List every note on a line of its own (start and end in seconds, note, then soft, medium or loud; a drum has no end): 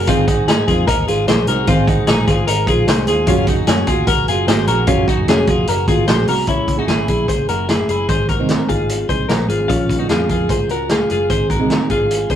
0.07 0.41 G#1 loud
0.07 0.68 G#2 medium
0.07 0.67 D#3 medium
0.07 0.68 G#3 medium
0.07 0.28 C4 medium
0.07 0.68 D#4 medium
0.07 0.27 F4 loud
0.07 0.69 G#4 loud
0.07 0.68 C5 medium
0.07 kick loud
0.07 closed hi-hat loud
0.28 0.48 D#4 medium
0.28 0.48 F#4 medium
0.28 kick medium
0.28 closed hi-hat medium
0.48 0.65 G#2 medium
0.48 0.68 D#4 medium
0.48 0.67 G#4 medium
0.48 snare loud
0.48 closed hi-hat medium
0.68 0.85 F2 medium
0.68 1.07 G#3 medium
0.68 1.07 D#4 medium
0.68 0.88 F4 medium
0.68 0.87 G#4 medium
0.68 1.08 G#4 medium
0.68 1.08 C5 medium
0.68 kick medium
0.68 closed hi-hat medium
0.87 1.04 D#2 medium
0.87 1.08 D#4 medium
0.87 1.07 A#4 medium
0.87 kick loud
0.87 closed hi-hat loud
1.08 1.25 G#1 medium
1.08 1.26 G#3 medium
1.08 1.26 D#4 medium
1.08 1.28 F4 medium
1.08 1.27 G#4 medium
1.08 1.28 C5 medium
1.08 closed hi-hat medium
1.27 1.45 A#1 medium
1.27 1.46 G#3 medium
1.27 1.47 D#4 medium
1.27 1.48 G#4 medium
1.27 1.48 C5 medium
1.27 snare loud
1.27 closed hi-hat loud
1.47 1.64 C2 medium
1.47 1.66 G#3 medium
1.47 1.66 D#4 medium
1.47 1.68 F#4 medium
1.47 1.66 G#4 medium
1.47 1.68 A#4 medium
1.47 1.67 C5 medium
1.47 closed hi-hat medium
1.66 2.02 G#1 medium
1.66 2.27 G#2 medium
1.66 2.27 D#3 medium
1.66 2.26 G#3 medium
1.66 1.88 C4 medium
1.66 2.26 D#4 medium
1.66 1.88 F4 loud
1.66 2.27 G#4 medium
1.66 2.27 C5 medium
1.66 kick loud
1.66 closed hi-hat medium
1.88 2.07 D#4 medium
1.88 2.08 F#4 medium
1.88 kick loud
1.88 closed hi-hat medium
2.07 2.25 A#1 medium
2.07 2.28 D#4 medium
2.07 2.26 G#4 medium
2.07 snare loud
2.07 closed hi-hat medium
2.26 2.45 G#1 medium
2.26 2.66 G#3 medium
2.26 2.66 D#4 medium
2.26 2.48 F4 medium
2.26 2.47 G#4 medium
2.26 2.67 G#4 medium
2.26 2.67 C5 medium
2.26 kick medium
2.26 snare soft
2.26 closed hi-hat medium
2.47 2.67 G#1 medium
2.47 2.68 D#4 medium
2.47 2.68 A#4 medium
2.47 closed hi-hat medium
2.67 2.84 A#1 medium
2.67 2.85 G#3 medium
2.67 2.86 D#4 medium
2.67 2.88 F4 medium
2.67 2.86 G#4 medium
2.67 2.88 G#4 medium
2.67 2.87 C5 medium
2.67 kick medium
2.67 closed hi-hat medium
2.86 3.05 C2 loud
2.86 3.05 G#3 medium
2.86 3.06 D#4 medium
2.86 3.07 G#4 medium
2.86 3.07 C5 medium
2.86 3.08 C5 medium
2.86 snare loud
2.86 closed hi-hat medium
3.06 3.24 D#2 medium
3.06 3.27 G#3 medium
3.06 3.27 D#4 medium
3.06 3.27 F4 medium
3.06 3.28 G#4 medium
3.06 3.28 C5 medium
3.06 closed hi-hat medium
3.27 3.61 F#1 loud
3.27 3.88 F#3 medium
3.27 3.88 A#3 medium
3.27 3.88 C#4 medium
3.27 3.48 C#4 medium
3.27 3.48 F4 loud
3.27 3.88 F#4 medium
3.27 3.89 G#4 loud
3.27 kick loud
3.27 closed hi-hat loud
3.47 3.68 D#4 medium
3.47 3.68 F#4 medium
3.47 kick loud
3.47 closed hi-hat medium
3.67 3.85 F#2 medium
3.67 3.88 C#4 medium
3.67 3.87 G#4 medium
3.67 snare loud
3.67 closed hi-hat medium
3.87 4.04 D#2 medium
3.87 4.27 A#3 medium
3.87 4.28 C#4 medium
3.87 4.08 F4 medium
3.87 4.28 F#4 medium
3.87 4.07 G#4 medium
3.87 4.29 G#4 medium
3.87 kick medium
3.87 closed hi-hat medium
4.07 4.24 C#2 medium
4.07 4.28 F#4 medium
4.07 4.28 A#4 medium
4.07 kick loud
4.07 closed hi-hat loud
4.28 4.45 F#1 medium
4.28 4.45 A#3 medium
4.28 4.46 C#4 medium
4.28 4.49 F4 medium
4.28 4.47 F#4 medium
4.28 4.48 G#4 medium
4.28 4.47 G#4 medium
4.28 closed hi-hat medium
4.47 4.64 G#1 medium
4.47 4.66 A#3 medium
4.47 4.67 C#4 medium
4.47 4.67 F#4 medium
4.47 4.68 G#4 medium
4.47 4.67 C5 medium
4.47 snare loud
4.47 closed hi-hat loud
4.67 4.85 A#1 loud
4.67 4.86 A#3 medium
4.67 4.86 C#4 medium
4.67 4.87 F#4 medium
4.67 4.86 F#4 medium
4.67 4.86 G#4 medium
4.67 4.88 A#4 medium
4.67 closed hi-hat medium
4.87 5.05 F#1 loud
4.87 5.47 F#3 medium
4.87 5.46 A#3 medium
4.87 5.47 C#4 medium
4.87 5.08 C#4 medium
4.87 5.08 F4 loud
4.87 5.47 F#4 medium
4.87 5.48 G#4 medium
4.87 kick loud
4.87 closed hi-hat loud
5.08 5.29 D#4 medium
5.08 5.28 F#4 medium
5.08 kick medium
5.08 closed hi-hat medium
5.18 5.26 F#1 medium
5.28 5.45 F1 medium
5.28 5.49 C#4 medium
5.28 5.48 G#4 medium
5.28 snare loud
5.28 closed hi-hat medium
5.47 5.65 F1 medium
5.47 5.87 A#3 medium
5.47 5.87 C#4 medium
5.47 5.69 F4 medium
5.47 5.87 F#4 medium
5.47 5.88 G#4 medium
5.47 5.68 G#4 medium
5.47 kick medium
5.47 closed hi-hat medium
5.67 5.85 F#1 loud
5.67 5.89 F#4 medium
5.67 5.88 A#4 medium
5.67 closed hi-hat medium
5.87 6.05 G#1 medium
5.87 6.05 A#3 medium
5.87 6.06 C#4 medium
5.87 6.08 F4 medium
5.87 6.07 F#4 medium
5.87 6.07 G#4 medium
5.87 kick medium
5.87 closed hi-hat medium
6.06 6.25 A#1 medium
6.06 6.26 A#3 medium
6.06 6.26 C#4 medium
6.06 6.27 F#4 medium
6.06 6.28 G#4 medium
6.06 6.28 C5 medium
6.06 snare loud
6.06 closed hi-hat medium
6.27 6.45 C2 medium
6.27 6.45 A#3 medium
6.27 6.46 C#4 medium
6.27 6.48 F#4 medium
6.27 6.49 F#4 medium
6.27 6.48 G#4 medium
6.27 6.48 A#4 medium
6.27 open hi-hat medium
6.46 6.89 C#2 medium
6.46 6.77 A#3 medium
6.46 6.76 C#4 medium
6.46 6.77 C#4 medium
6.46 6.76 E4 medium
6.46 6.77 E4 medium
6.46 6.75 G#4 medium
6.46 kick medium
6.46 closed hi-hat medium
6.68 kick medium
6.68 closed hi-hat medium
6.76 7.08 C#3 medium
6.76 7.06 A#3 medium
6.76 7.08 C#4 medium
6.76 6.89 D#4 soft
6.76 7.08 E4 medium
6.76 6.88 F#4 medium
6.76 7.07 G#4 medium
6.88 7.05 G#1 medium
6.88 7.09 E4 medium
6.88 7.07 G#4 medium
6.88 snare loud
6.88 closed hi-hat medium
7.08 7.25 A#1 medium
7.08 7.48 A#3 medium
7.08 7.49 C#4 medium
7.08 7.48 E4 medium
7.08 7.28 E4 soft
7.08 7.28 G#4 medium
7.08 7.51 G#4 medium
7.08 kick medium
7.08 closed hi-hat medium
7.28 7.45 C#2 medium
7.28 7.49 G#4 soft
7.28 7.48 C5 medium
7.28 kick medium
7.28 closed hi-hat medium
7.48 7.83 F#1 medium
7.48 7.67 A#3 medium
7.48 7.68 C#4 medium
7.48 7.69 E4 medium
7.48 7.69 F#4 medium
7.48 7.69 G#4 medium
7.48 7.69 A#4 medium
7.48 closed hi-hat medium
7.68 8.08 A#3 medium
7.68 8.09 C#4 medium
7.68 8.09 E4 medium
7.68 7.89 E4 soft
7.68 7.88 G#4 medium
7.68 8.11 G#4 medium
7.68 snare loud
7.68 closed hi-hat medium
7.89 8.06 F#1 medium
7.89 8.09 E4 medium
7.89 8.09 G#4 medium
7.89 closed hi-hat medium
8.09 8.34 G#1 medium
8.09 8.39 G#3 medium
8.09 8.39 C4 medium
8.09 8.38 D#4 medium
8.09 8.29 G#4 medium
8.09 8.29 C5 medium
8.09 8.38 C5 medium
8.09 kick loud
8.09 closed hi-hat medium
8.29 8.67 F#4 soft
8.29 8.67 A#4 medium
8.29 kick medium
8.29 closed hi-hat medium
8.39 8.56 C2 medium
8.39 8.70 G#2 medium
8.39 8.69 D#3 medium
8.39 8.68 G#3 medium
8.39 8.69 C4 medium
8.39 8.69 D#4 medium
8.39 8.69 C5 medium
8.49 snare medium
8.49 closed hi-hat medium
8.69 9.03 G#1 medium
8.69 9.08 G#3 medium
8.69 9.08 C4 medium
8.69 9.08 D#4 medium
8.69 9.07 F4 soft
8.69 9.06 G#4 medium
8.69 9.09 C5 medium
8.69 kick medium
8.69 closed hi-hat medium
8.89 closed hi-hat medium
9.09 9.26 C2 medium
9.09 9.28 G#3 medium
9.09 9.29 C4 medium
9.09 9.29 D#4 medium
9.09 9.28 G#4 medium
9.09 9.29 C5 medium
9.09 9.30 C5 medium
9.09 kick medium
9.09 closed hi-hat medium
9.29 9.46 A#1 medium
9.29 9.69 G#3 medium
9.29 9.70 C4 medium
9.29 9.49 D#4 soft
9.29 9.70 D#4 medium
9.29 9.48 A#4 medium
9.29 9.70 C5 medium
9.29 snare loud
9.29 closed hi-hat medium
9.49 9.66 G#1 medium
9.49 9.67 F4 soft
9.49 9.69 G#4 medium
9.49 closed hi-hat medium
9.68 10.04 A#1 medium
9.68 9.99 G#3 medium
9.68 9.98 C#4 medium
9.68 9.99 C#4 medium
9.68 9.97 F4 loud
9.68 9.99 F4 medium
9.68 9.98 A#4 medium
9.68 kick loud
9.68 closed hi-hat medium
9.89 kick medium
9.89 closed hi-hat medium
9.99 10.31 A#2 medium
9.99 10.30 F3 medium
9.99 10.30 G#3 medium
9.99 10.30 C#4 medium
9.99 10.09 D#4 medium
9.99 10.30 F4 medium
9.99 10.09 F#4 medium
9.99 10.30 A#4 medium
10.09 10.26 F2 medium
10.09 10.30 F4 medium
10.09 10.29 G#4 medium
10.09 snare loud
10.09 closed hi-hat medium
10.29 10.47 F2 medium
10.29 10.70 G#3 medium
10.29 10.70 C#4 medium
10.29 10.50 F4 medium
10.29 10.71 F4 medium
10.29 10.50 G#4 medium
10.29 10.71 A#4 medium
10.29 kick medium
10.29 closed hi-hat medium
10.49 10.67 G#2 medium
10.49 10.70 G#4 soft
10.49 10.70 C5 medium
10.49 kick medium
10.49 closed hi-hat medium
10.69 11.04 C#2 medium
10.69 10.88 G#3 medium
10.69 10.89 C#4 medium
10.69 10.90 F4 medium
10.69 10.91 F#4 medium
10.69 10.90 A#4 medium
10.69 closed hi-hat medium
10.89 11.28 G#3 medium
10.89 11.29 C#4 medium
10.89 11.29 F4 medium
10.89 11.11 F4 soft
10.89 11.10 G#4 medium
10.89 11.30 A#4 medium
10.89 snare loud
10.89 closed hi-hat medium
11.10 11.28 F#1 medium
11.10 11.31 F4 soft
11.10 11.30 G#4 medium
11.10 closed hi-hat medium
11.29 11.56 G#1 loud
11.29 11.59 G#3 medium
11.29 11.58 C4 medium
11.29 11.58 D#4 medium
11.29 11.58 G#4 medium
11.29 11.50 G#4 medium
11.29 11.50 C5 medium
11.29 kick medium
11.29 closed hi-hat medium
11.50 11.88 F#4 soft
11.50 11.88 A#4 medium
11.50 kick medium
11.50 closed hi-hat medium
11.59 11.78 C2 medium
11.59 11.90 G#2 medium
11.59 11.90 D#3 medium
11.59 11.89 G#3 medium
11.59 11.89 C4 medium
11.59 11.90 D#4 medium
11.59 11.90 G#4 medium
11.70 snare loud
11.70 closed hi-hat medium
11.90 12.24 G#1 medium
11.90 12.29 G#3 medium
11.90 12.29 C4 medium
11.90 12.30 D#4 medium
11.90 12.29 F4 soft
11.90 12.28 G#4 medium
11.90 12.31 G#4 medium
11.90 kick medium
11.90 closed hi-hat medium
12.11 closed hi-hat medium
12.30 12.36 C2 medium
12.30 12.36 G#3 medium
12.30 12.36 C4 medium
12.30 12.36 D#4 medium
12.30 12.36 G#4 medium
12.30 12.36 C5 medium
12.30 kick medium
12.30 closed hi-hat medium